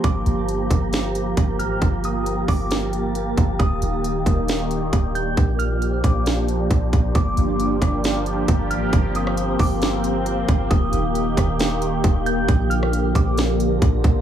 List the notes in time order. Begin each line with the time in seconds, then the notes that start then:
Already playing: F3 F4 G4 A#4 G5
0.04 G1 A#3 F4 D6, kick, closed hi-hat
0.26 G1, closed hi-hat
0.49 closed hi-hat
0.70 G1, kick, closed hi-hat
0.93 snare, closed hi-hat
1.15 closed hi-hat
1.37 G1, kick, closed hi-hat
1.59 A1 F6, closed hi-hat
1.71 G1
1.81 G1 A5, kick, closed hi-hat
2.04 D#6, closed hi-hat
2.26 closed hi-hat
2.48 G1 D6, kick, open hi-hat
2.71 snare, closed hi-hat
2.93 closed hi-hat
3.15 closed hi-hat
3.37 G1, kick, closed hi-hat
3.59 D#1 D#3 D4 D#4 G5 D#6, kick, closed hi-hat
3.82 D#1, closed hi-hat
4.04 closed hi-hat
4.26 D#1, kick, closed hi-hat
4.48 snare, closed hi-hat
4.71 closed hi-hat
4.93 D#1, kick, closed hi-hat
5.15 G6, closed hi-hat
5.37 A#1 F3 D4 A#4, kick, closed hi-hat
5.59 F6, closed hi-hat
5.82 closed hi-hat
6.04 A#1 D6, kick, closed hi-hat
6.26 snare, closed hi-hat
6.48 closed hi-hat
6.71 A#1, kick, closed hi-hat
6.93 A#1, kick, closed hi-hat
7.15 G1 F3 A#3 D4 F4 G4 A#4 G5 D6, kick, closed hi-hat
7.37 G1, closed hi-hat
7.60 closed hi-hat
7.82 G1, kick, cross-stick, closed hi-hat
8.04 snare, closed hi-hat
8.26 closed hi-hat
8.48 G1, kick, closed hi-hat
8.71 A1 F6, closed hi-hat
8.82 G1
8.93 G1 C4, kick, closed hi-hat
9.15 D#6, closed hi-hat
9.27 cross-stick
9.37 closed hi-hat
9.59 G1 D6, kick, open hi-hat
9.82 snare, closed hi-hat
10.04 closed hi-hat
10.26 closed hi-hat
10.48 G1, kick, closed hi-hat
10.70 D#1 D#3 D4 D#4 D#6, kick, closed hi-hat
10.93 D#1, closed hi-hat
11.15 closed hi-hat
11.37 D#1, kick, cross-stick, closed hi-hat
11.59 snare, closed hi-hat
11.82 closed hi-hat
12.04 D#1, kick, closed hi-hat
12.26 G6, closed hi-hat
12.48 A#1 D3 F3 G4 A#5, kick, closed hi-hat
12.70 F6, closed hi-hat
12.83 cross-stick
12.93 closed hi-hat
13.15 A#1 D6, kick, closed hi-hat
13.38 snare, closed hi-hat
13.60 closed hi-hat
13.82 A#1, kick, closed hi-hat
14.04 A#1, kick, closed hi-hat